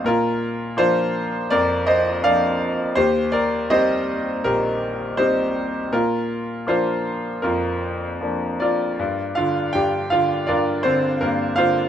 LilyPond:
<<
  \new Staff \with { instrumentName = "Grand piano" } { \time 4/4 \key bes \major \tempo 4 = 81 <f' bes'>4 <f' c''>4 <bes' d''>8 <c'' ees''>8 <d'' f''>8. r16 | <g' c''>8 <bes' d''>8 <c'' ees''>4 <g' bes'>4 <g' c''>8. r16 | <f' bes'>4 <f' c''>4 <f' bes'>4. <d' f' bes' d''>8~ | \key g \minor <d' f' bes' d''>8 <f' f''>8 <g' g''>8 <f' f''>8 <d' f' bes' d''>8 <c' c''>8 <bes bes'>8 <f' c'' f''>8 | }
  \new Staff \with { instrumentName = "Grand piano" } { \clef bass \time 4/4 \key bes \major bes,4 <f bes d'>4 f,4 <f bes d'>4 | ees,4 <g c' ees'>4 bes,,4 <g c' ees'>4 | bes,4 <f bes d'>4 f,4 <f bes d'>4 | \key g \minor g,8 d8 g,8 d8 g,8 d8 g,8 d8 | }
>>